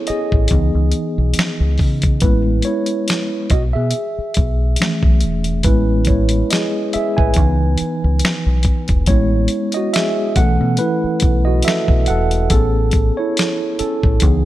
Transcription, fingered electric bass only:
0.10 muted fingered electric bass stroke soft
0.33 0.49 A1 medium
0.51 0.72 C#2 medium
0.75 0.92 C#2 medium
1.18 1.35 B1 medium
1.38 muted fingered electric bass stroke soft
1.60 1.77 C#2 medium
1.80 2.18 C#3 medium
2.22 2.61 A1 medium
3.51 3.72 B1 medium
3.76 3.92 B2 medium
4.18 muted fingered electric bass stroke soft
4.38 4.75 B1 medium
5.03 5.24 B1 medium
5.24 5.62 E1 medium
5.65 6.42 A1 loud
6.95 muted fingered electric bass stroke soft
7.18 7.35 A1 medium
7.37 7.75 C#2 loud
7.81 muted fingered electric bass stroke soft
8.04 8.21 C#2 medium
8.23 muted fingered electric bass stroke soft
8.46 8.63 B1 medium
8.90 9.06 E1 medium
9.08 9.46 A1 loud
10.36 10.57 B1 medium
10.61 10.78 B2 loud
11.04 muted fingered electric bass stroke soft
11.23 11.61 B1 medium
11.89 12.06 B1 medium
12.09 12.47 E1 medium
12.51 13.10 A1 loud
13.80 muted fingered electric bass stroke soft
14.04 14.21 A1 medium
14.23 14.45 C#2 medium

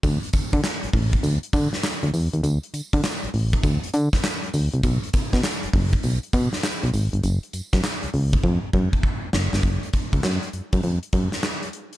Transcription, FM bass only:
0.03 0.19 D2 loud
0.34 0.41 D3 soft
0.53 0.61 D3 loud
0.83 0.87 A1 soft
0.94 1.17 A1 loud
1.23 1.39 D2 loud
1.53 1.69 D3 loud
2.03 2.11 D2 medium
2.14 2.29 E2 medium
2.34 2.41 D#2 medium
2.43 2.59 D2 loud
2.74 2.82 D3 soft
2.94 3.01 D3 medium
3.24 3.28 A1 soft
3.34 3.57 A1 medium
3.64 3.79 D2 loud
3.94 4.09 D3 loud
4.54 4.69 D2 loud
4.74 4.81 C2 medium
4.84 4.99 B1 loud
5.14 5.22 B2 soft
5.33 5.41 B2 medium
5.64 5.68 F#1 medium
5.74 5.97 F#1 loud
6.04 6.19 B1 loud
6.33 6.49 B2 loud
6.83 6.91 B1 loud
6.94 7.09 G#1 loud
7.13 7.21 G1 medium
7.24 7.39 F#1 loud
7.54 7.62 F#2 soft
7.73 7.81 F#2 medium
8.03 8.07 C#2 soft
8.14 8.37 C#2 loud
8.44 8.59 F2 loud
8.74 8.89 F#2 loud
9.33 9.49 F#1 medium
9.53 9.61 G1 loud
9.63 9.79 F#1 loud
10.13 10.21 C#2 medium
10.24 10.39 F#2 loud
10.54 10.61 F#2 soft
10.73 10.81 F#2 medium
10.84 10.99 F2 loud
11.13 11.28 F#2 loud

